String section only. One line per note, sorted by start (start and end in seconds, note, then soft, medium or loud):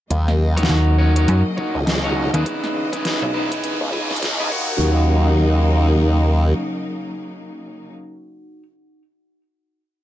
0.11 4.48 C#3 medium
0.11 2.44 F#3 medium
0.11 2.44 A#3 medium
0.11 4.48 D#5 medium
2.46 4.50 E3 medium
2.46 4.50 B3 medium
4.52 7.93 C#3 medium
4.52 7.93 F#3 medium
4.52 7.93 A#3 medium
4.52 7.93 D#4 loud